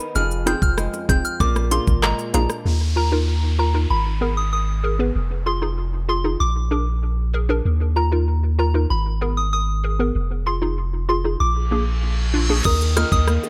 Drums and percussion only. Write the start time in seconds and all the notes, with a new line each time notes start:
0.00 shaker
0.15 high bongo, shaker
0.31 shaker
0.47 cross-stick, closed hi-hat, high bongo, shaker
0.62 kick, shaker
0.78 cross-stick, shaker
0.94 high bongo, shaker
1.09 kick, closed hi-hat, shaker
1.25 shaker
1.40 kick, high bongo, shaker
1.56 cross-stick, high bongo, shaker
1.71 closed hi-hat, high bongo, shaker
1.87 kick, shaker
2.03 cross-stick, clap, shaker
2.19 shaker
2.34 closed hi-hat, low bongo, shaker
2.50 cross-stick, shaker
12.65 kick, crash, high bongo, shaker
12.81 shaker
12.97 cross-stick, closed hi-hat, high bongo, shaker
13.12 kick, shaker
13.28 cross-stick, shaker
13.44 high bongo, shaker